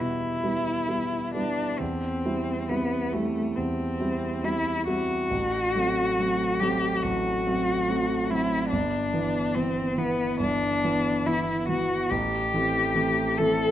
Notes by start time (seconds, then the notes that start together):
Already playing: E2 G3 B3 E4
0.00 B2 E4
0.44 G3 B3 E4
0.89 G3 B3 E4
1.34 G3 B3 D4 E4
1.78 E2 C4
2.25 G3 C4 E4
2.69 G3 B3 C4 E4
3.13 G3 A3 C4 E4
3.56 E2 C4
4.00 G3 C4 E4
4.44 G3 C4 E4
4.88 G3 C4 E4 F#4
5.31 A1
5.75 F#3 A3 C4
6.19 F#3 A3 C4
6.60 F#3 A3 C4 G4
7.03 A1 F#4
7.46 F#3 A3 C4
7.89 F#3 A3 C4
8.30 F#3 A3 C4 E4
8.70 G1 D4
9.14 E3 B3
9.55 E3 B3 C4
9.98 E3 B3
10.39 G1 D4
10.84 E3 B3
11.26 E3 B3 E4
11.69 E3 B3 F#4
12.10 A1 G4
12.54 E3 A3 C4
12.95 E3 A3 C4
13.38 E3 A3 C4 A4